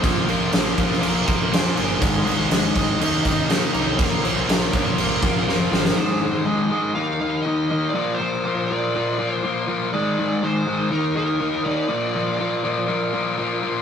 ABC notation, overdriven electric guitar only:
X:1
M:4/4
L:1/8
Q:1/4=122
K:Bbmix
V:1 name="Overdriven electric guitar" clef=bass
[B,,F,B,] [B,,F,B,] [B,,F,B,] [B,,F,B,] [B,,F,B,] [B,,F,B,] [B,,F,B,] [B,,F,B,] | [A,,E,A,] [A,,E,A,] [A,,E,A,] [A,,E,A,] [E,B,E] [E,B,E] [E,B,E] [E,B,E] | [B,,F,B,] [B,,F,B,] [B,,F,B,] [B,,F,B,] [B,,F,B,] [B,,F,B,] [B,,F,B,] [B,,F,B,] | [A,,E,A,] [A,,E,A,] [A,,E,A,] [A,,E,A,] [E,B,E] [E,B,E] [E,B,E] [E,B,E] |
[B,,F,B,] [B,,F,B,] [B,,F,B,] [B,,F,B,] [B,,F,B,] [B,,F,B,] [B,,F,B,] [B,,F,B,] | [A,,E,A,] [A,,E,A,] [A,,E,A,] [A,,E,A,] [E,B,E] [E,B,E] [E,B,E] [E,B,E] | [B,,F,B,] [B,,F,B,] [B,,F,B,] [B,,F,B,] [B,,F,B,] [B,,F,B,] [B,,F,B,] [B,,F,B,] |]